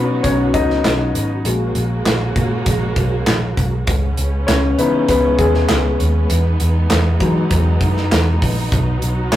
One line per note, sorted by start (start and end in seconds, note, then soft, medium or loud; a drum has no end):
0.00 0.18 B2 medium
0.00 1.43 F#3 medium
0.00 1.48 F#3 soft
0.00 1.41 B3 medium
0.00 1.47 B3 medium
0.00 0.25 C#4 medium
0.00 0.55 D#4 medium
0.00 1.41 D#4 medium
0.00 1.43 F#4 medium
0.00 0.21 B4 medium
0.00 0.23 C#5 medium
0.23 0.49 B1 medium
0.23 0.53 C#4 medium
0.23 0.55 C#5 medium
0.23 kick medium
0.23 closed hi-hat medium
0.54 0.79 C#2 medium
0.54 1.11 D#4 medium
0.54 1.11 D#5 medium
0.54 kick medium
0.54 closed hi-hat medium
0.70 snare soft
0.84 1.09 B1 medium
0.84 snare loud
0.84 clap medium
0.84 closed hi-hat medium
1.14 1.39 G#1 medium
1.14 closed hi-hat medium
1.44 1.70 A#1 medium
1.44 3.85 C#3 medium
1.44 3.85 G#3 medium
1.44 3.84 G#3 soft
1.44 3.84 A#3 medium
1.44 3.84 A#3 soft
1.44 3.85 F#4 medium
1.44 3.84 F#4 soft
1.44 closed hi-hat medium
1.75 2.00 A#1 medium
1.75 closed hi-hat medium
2.05 2.30 A#1 medium
2.05 snare loud
2.05 clap medium
2.05 closed hi-hat medium
2.36 2.61 A#2 medium
2.36 kick medium
2.36 closed hi-hat medium
2.66 2.91 A#1 medium
2.66 kick medium
2.66 closed hi-hat loud
2.96 3.21 B1 medium
2.96 kick medium
2.96 closed hi-hat medium
3.27 3.52 A#1 medium
3.27 snare loud
3.27 clap medium
3.27 closed hi-hat medium
3.57 3.82 B1 medium
3.57 kick medium
3.57 closed hi-hat medium
3.87 4.12 C#2 medium
3.87 6.27 C#3 medium
3.87 8.68 G#3 medium
3.87 9.36 B3 medium
3.87 6.27 C#4 medium
3.87 kick loud
3.87 closed hi-hat medium
4.17 4.42 C#2 medium
4.17 closed hi-hat medium
4.47 4.73 C#2 medium
4.47 4.76 C#4 medium
4.47 4.79 C#5 medium
4.47 snare medium
4.47 clap medium
4.47 closed hi-hat medium
4.78 5.03 C#3 medium
4.78 5.19 E3 medium
4.78 5.07 B3 medium
4.78 5.19 D#4 medium
4.78 5.07 B4 medium
4.78 closed hi-hat medium
5.09 5.33 C#2 medium
5.09 5.38 B3 medium
5.09 5.37 B4 medium
5.09 kick medium
5.09 closed hi-hat loud
5.39 5.64 D#2 medium
5.39 5.96 G#3 medium
5.39 5.95 G#4 medium
5.39 kick medium
5.39 closed hi-hat medium
5.54 snare soft
5.69 5.94 C#2 medium
5.69 snare loud
5.69 clap medium
5.69 closed hi-hat medium
6.00 6.24 D#2 medium
6.00 closed hi-hat medium
6.29 6.54 E2 medium
6.29 8.69 E3 medium
6.29 9.36 D#4 medium
6.29 closed hi-hat medium
6.60 6.85 E2 medium
6.60 closed hi-hat medium
6.90 7.15 E2 medium
6.90 snare loud
6.90 clap medium
6.90 closed hi-hat medium
7.20 7.45 E3 medium
7.20 8.67 F#3 medium
7.20 8.68 G#3 soft
7.20 8.68 D#4 medium
7.20 kick medium
7.20 closed hi-hat medium
7.51 7.76 E2 medium
7.51 kick medium
7.51 closed hi-hat medium
7.81 8.06 F#2 medium
7.81 kick medium
7.81 closed hi-hat medium
7.97 snare soft
8.12 8.36 E2 medium
8.12 snare loud
8.12 clap medium
8.12 closed hi-hat medium
8.42 8.67 A#1 medium
8.42 kick medium
8.42 open hi-hat medium
8.71 8.97 B1 medium
8.71 9.36 F#3 medium
8.71 9.36 F#4 medium
8.71 kick loud
8.71 closed hi-hat loud
9.02 9.27 B1 medium
9.02 closed hi-hat medium
9.32 9.36 B1 medium
9.32 9.36 C#5 medium
9.32 snare loud
9.32 clap medium
9.32 closed hi-hat medium